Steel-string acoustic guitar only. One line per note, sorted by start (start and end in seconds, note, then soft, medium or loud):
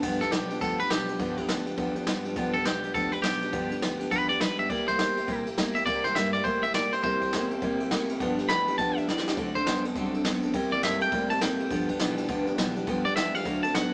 0.02 0.21 G2 medium
0.02 0.21 D3 medium
0.02 0.21 F3 medium
0.02 0.21 B3 loud
0.02 0.20 D4 loud
0.02 0.19 G4 loud
0.21 0.30 F3 soft
0.21 0.31 B3 medium
0.21 0.32 D4 medium
0.21 0.32 G4 medium
0.32 0.50 F3 medium
0.32 0.50 B3 medium
0.32 0.49 D4 medium
0.32 0.49 G4 medium
0.50 0.61 F3 soft
0.50 0.61 B3 soft
0.50 0.61 D4 medium
0.50 0.61 G4 medium
0.61 0.79 G2 medium
0.61 0.80 D3 medium
0.61 0.80 F3 medium
0.61 0.80 B3 medium
0.61 0.79 D4 medium
0.61 0.78 G4 medium
0.79 0.89 F3 soft
0.79 0.90 B3 soft
0.79 0.91 D4 soft
0.79 0.90 G4 medium
0.90 1.08 F3 medium
0.90 1.08 B3 medium
0.90 1.08 D4 medium
0.90 1.07 G4 medium
1.08 1.18 F3 soft
1.08 1.19 B3 soft
1.08 1.19 D4 medium
1.08 1.19 G4 medium
1.19 1.37 G2 medium
1.19 1.38 D3 medium
1.19 1.38 F3 medium
1.19 1.37 B3 medium
1.19 1.37 D4 medium
1.19 1.36 G4 medium
1.37 1.47 F3 soft
1.37 1.48 B3 soft
1.37 1.49 D4 medium
1.37 1.48 G4 medium
1.48 1.67 F3 medium
1.48 1.66 B3 medium
1.48 1.66 D4 medium
1.48 1.65 G4 medium
1.66 1.76 F3 soft
1.66 1.76 B3 medium
1.66 1.77 D4 medium
1.66 1.77 G4 medium
1.77 1.95 G2 loud
1.77 1.96 D3 medium
1.77 1.96 F3 medium
1.77 1.95 B3 medium
1.77 1.95 D4 medium
1.77 1.94 G4 loud
1.95 2.05 F3 medium
1.95 2.06 B3 medium
1.95 2.07 D4 medium
1.95 2.07 G4 medium
2.06 2.25 F3 medium
2.06 2.25 B3 medium
2.06 2.25 D4 medium
2.06 2.24 G4 medium
2.25 2.35 F3 soft
2.25 2.36 B3 medium
2.25 2.36 D4 medium
2.25 2.36 G4 medium
2.36 2.54 G2 medium
2.36 2.54 D3 medium
2.36 2.55 F3 medium
2.36 2.54 B3 loud
2.36 2.53 D4 loud
2.36 2.53 G4 loud
2.54 2.64 F3 soft
2.54 2.64 B3 soft
2.54 2.65 D4 medium
2.54 2.65 G4 medium
2.65 2.83 F3 medium
2.65 2.84 B3 medium
2.65 2.83 D4 medium
2.65 2.83 G4 medium
2.84 2.94 F3 soft
2.84 2.94 B3 soft
2.84 2.95 D4 medium
2.84 2.95 G4 medium
2.94 3.13 G2 medium
2.94 3.13 D3 medium
2.94 3.13 F3 medium
2.94 3.13 B3 medium
2.94 3.12 D4 medium
2.94 3.11 G4 medium
3.12 3.22 F3 soft
3.12 3.23 B3 medium
3.12 3.23 D4 medium
3.12 3.23 G4 medium
3.23 3.42 F3 medium
3.23 3.42 B3 medium
3.23 3.41 D4 medium
3.23 3.40 G4 medium
3.41 3.52 F3 soft
3.41 3.52 B3 soft
3.41 3.53 D4 medium
3.41 3.53 G4 medium
3.52 3.71 G2 medium
3.52 3.71 D3 medium
3.52 3.71 F3 medium
3.52 3.71 B3 medium
3.52 3.70 D4 medium
3.52 3.69 G4 medium
3.70 3.80 F3 soft
3.70 3.81 B3 medium
3.70 3.81 D4 medium
3.70 3.82 G4 medium
3.81 4.00 F3 medium
3.81 4.00 B3 medium
3.81 3.99 D4 medium
3.81 3.98 G4 medium
3.99 4.11 F3 medium
3.99 4.11 B3 medium
3.99 4.11 D4 medium
3.99 4.11 G4 medium
4.11 4.29 G2 medium
4.11 4.30 D3 medium
4.11 4.30 F3 medium
4.11 4.30 B3 medium
4.11 4.29 D4 medium
4.11 4.28 G4 medium
4.29 4.39 F3 soft
4.29 4.40 B3 soft
4.29 4.41 D4 medium
4.29 4.41 G4 medium
4.40 4.59 F3 medium
4.40 4.58 B3 medium
4.40 4.58 D4 medium
4.58 4.69 F3 soft
4.58 4.70 B3 soft
4.58 4.70 D4 soft
4.58 4.69 G4 medium
4.69 4.88 C3 medium
4.69 4.88 G3 medium
4.69 4.88 A#3 medium
4.69 4.88 E4 medium
4.69 4.86 G4 medium
4.87 4.98 A#3 soft
4.87 4.99 E4 medium
4.87 4.99 G4 medium
4.98 5.17 G3 medium
4.98 5.17 A#3 medium
4.98 5.17 E4 medium
4.98 5.15 G4 medium
5.16 5.27 A#3 soft
5.16 5.27 E4 soft
5.16 5.28 G4 medium
5.27 5.46 C3 medium
5.27 5.46 G3 medium
5.27 5.46 A#3 medium
5.27 5.47 E4 medium
5.27 5.45 G4 loud
5.46 5.57 A#3 medium
5.46 5.58 E4 medium
5.46 5.57 G4 medium
5.58 5.76 G3 medium
5.58 5.76 A#3 medium
5.58 5.76 E4 medium
5.58 5.75 G4 medium
5.76 5.86 A#3 soft
5.76 5.87 E4 soft
5.76 5.87 G4 medium
5.87 6.05 C3 medium
5.87 6.05 G3 medium
5.87 6.05 A#3 medium
5.87 6.05 E4 loud
5.87 6.04 G4 medium
6.05 6.16 A#3 soft
6.05 6.17 E4 medium
6.05 6.16 G4 medium
6.16 6.34 G3 medium
6.16 6.35 A#3 medium
6.16 6.34 E4 medium
6.16 6.33 G4 medium
6.34 6.45 A#3 soft
6.34 6.45 E4 medium
6.34 6.45 G4 medium
6.45 6.63 C3 medium
6.45 6.64 G3 medium
6.45 6.64 A#3 medium
6.45 6.63 E4 medium
6.45 6.62 G4 medium
6.63 6.74 A#3 medium
6.63 6.75 E4 medium
6.63 6.74 G4 medium
6.74 6.93 G3 medium
6.74 6.93 A#3 medium
6.74 6.92 E4 medium
6.74 6.91 G4 medium
6.92 7.03 A#3 soft
6.92 7.03 E4 medium
6.92 7.03 G4 medium
7.03 7.22 C3 medium
7.03 7.22 G3 medium
7.03 7.22 A#3 medium
7.03 7.22 E4 medium
7.03 7.20 G4 medium
7.21 7.33 A#3 soft
7.21 7.33 E4 soft
7.21 7.33 G4 medium
7.33 7.51 G3 medium
7.33 7.52 A#3 medium
7.33 7.51 E4 medium
7.33 7.50 G4 medium
7.51 7.61 A#3 soft
7.51 7.62 E4 medium
7.51 7.62 G4 medium
7.62 7.80 C3 medium
7.62 7.80 G3 medium
7.62 7.80 A#3 medium
7.62 7.81 E4 medium
7.62 7.79 G4 loud
7.80 7.91 A#3 soft
7.80 7.91 E4 medium
7.80 7.91 G4 medium
7.91 8.09 G3 medium
7.91 8.10 A#3 medium
7.91 8.10 E4 medium
7.91 8.08 G4 medium
8.10 8.21 A#3 medium
8.10 8.21 E4 medium
8.10 8.20 G4 medium
8.21 8.39 G2 loud
8.21 8.39 D3 medium
8.21 8.39 F3 loud
8.21 8.39 B3 loud
8.21 8.38 D4 loud
8.21 8.37 G4 loud
8.39 8.48 F3 soft
8.39 8.49 B3 medium
8.39 8.50 D4 medium
8.39 8.50 G4 medium
8.49 8.68 F3 medium
8.49 8.68 B3 medium
8.49 8.68 D4 medium
8.49 8.67 G4 medium
8.68 8.78 F3 soft
8.68 8.79 B3 soft
8.68 8.79 D4 soft
8.68 8.79 G4 medium
8.79 8.97 G2 medium
8.79 8.97 D3 medium
8.79 8.97 F3 medium
8.79 8.97 B3 medium
8.79 8.97 D4 medium
8.79 8.95 G4 medium
8.97 9.06 F3 soft
8.97 9.07 B3 soft
8.97 9.08 D4 medium
8.97 9.08 G4 medium
9.08 9.26 F3 medium
9.08 9.26 B3 medium
9.08 9.26 D4 medium
9.08 9.25 G4 medium
9.27 9.37 F3 soft
9.27 9.38 B3 soft
9.27 9.38 D4 medium
9.27 9.37 G4 medium
9.38 9.56 D3 medium
9.38 9.56 F#3 medium
9.38 9.56 C4 medium
9.38 9.56 D4 medium
9.38 9.55 A4 medium
9.56 9.66 C4 soft
9.56 9.67 D4 medium
9.56 9.67 A4 medium
9.67 9.85 F#3 medium
9.67 9.85 C4 medium
9.67 9.85 D4 medium
9.67 9.83 A4 medium
9.84 9.95 C4 soft
9.84 9.96 D4 medium
9.84 9.95 A4 medium
9.96 10.14 D3 medium
9.96 10.14 F#3 medium
9.96 10.14 C4 medium
9.96 10.14 D4 medium
9.96 10.13 A4 loud
10.14 10.24 C4 soft
10.14 10.25 D4 medium
10.14 10.25 A4 medium
10.25 10.43 F#3 medium
10.25 10.43 C4 medium
10.25 10.44 D4 medium
10.25 10.42 A4 medium
10.43 10.54 C4 medium
10.43 10.55 D4 medium
10.43 10.54 A4 medium
10.54 10.72 C3 medium
10.54 10.72 G3 medium
10.54 10.72 A#3 loud
10.54 10.72 E4 loud
10.54 10.71 G4 loud
10.72 10.82 A#3 soft
10.72 10.83 E4 medium
10.72 10.83 G4 medium
10.83 11.01 G3 medium
10.83 11.02 A#3 medium
10.83 11.01 E4 medium
10.83 11.00 G4 medium
11.01 11.11 A#3 soft
11.01 11.12 E4 medium
11.01 11.12 G4 medium
11.11 11.30 C3 medium
11.11 11.30 G3 medium
11.11 11.30 A#3 medium
11.11 11.31 E4 medium
11.11 11.29 G4 medium
11.30 11.41 A#3 soft
11.30 11.41 E4 soft
11.30 11.41 G4 medium
11.41 11.59 G3 medium
11.41 11.60 A#3 medium
11.41 11.60 E4 medium
11.41 11.58 G4 medium
11.60 11.71 A#3 soft
11.60 11.71 E4 soft
11.60 11.71 G4 medium
11.71 11.89 G2 medium
11.71 11.89 D3 medium
11.71 11.89 F3 medium
11.71 11.89 B3 medium
11.71 11.88 D4 medium
11.71 11.87 G4 medium
11.88 11.98 F3 medium
11.88 11.98 B3 medium
11.88 11.99 D4 medium
11.88 12.00 G4 medium
11.99 12.18 F3 medium
11.99 12.17 B3 medium
11.99 12.16 D4 medium
11.99 12.15 G4 medium
12.16 12.27 F3 medium
12.16 12.28 B3 medium
12.16 12.29 D4 medium
12.16 12.28 G4 medium
12.28 12.47 G2 loud
12.28 12.47 D3 loud
12.28 12.47 F3 loud
12.28 12.47 B3 loud
12.28 12.46 D4 loud
12.28 12.45 G4 loud
12.46 12.56 F3 medium
12.46 12.57 B3 medium
12.46 12.58 D4 medium
12.46 12.58 G4 medium
12.58 12.76 F3 medium
12.58 12.76 B3 medium
12.58 12.76 D4 medium
12.58 12.74 G4 medium
12.76 12.87 F3 medium
12.76 12.87 B3 medium
12.76 12.87 D4 medium
12.76 12.87 G4 medium
12.87 13.05 G2 medium
12.87 13.06 D3 medium
12.87 13.06 F3 loud
12.87 13.05 B3 loud
12.87 13.05 D4 loud
12.87 13.04 G4 loud
13.05 13.15 F3 soft
13.05 13.16 B3 medium
13.05 13.17 D4 medium
13.05 13.16 G4 medium
13.16 13.34 F3 medium
13.16 13.35 B3 medium
13.16 13.34 D4 medium
13.16 13.34 G4 medium
13.35 13.46 F3 soft
13.35 13.46 B3 soft
13.35 13.45 D4 medium
13.35 13.46 G4 medium
13.45 13.64 D3 medium
13.45 13.64 F#3 medium
13.45 13.64 C4 medium
13.45 13.64 D4 medium
13.45 13.62 A4 medium
13.64 13.74 C4 soft
13.64 13.74 D4 soft
13.64 13.75 A4 medium
13.74 13.92 F#3 medium
13.74 13.93 C4 medium
13.74 13.93 D4 medium
13.74 13.91 A4 medium